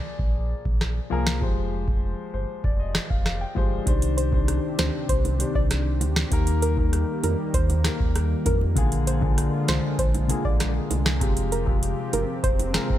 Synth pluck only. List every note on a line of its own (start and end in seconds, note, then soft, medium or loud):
4.17 4.28 C5 medium
4.79 4.90 C5 medium
5.09 5.20 C5 medium
5.55 5.66 D5 medium
6.62 6.73 A#4 medium
7.24 7.35 A#4 medium
7.54 7.97 C5 loud
8.46 8.57 A#4 medium
9.07 9.18 C5 medium
9.68 9.79 C5 medium
9.99 10.10 C5 medium
10.45 10.56 D5 medium
11.52 11.63 A#4 medium
12.14 12.25 A#4 medium
12.44 12.87 C5 loud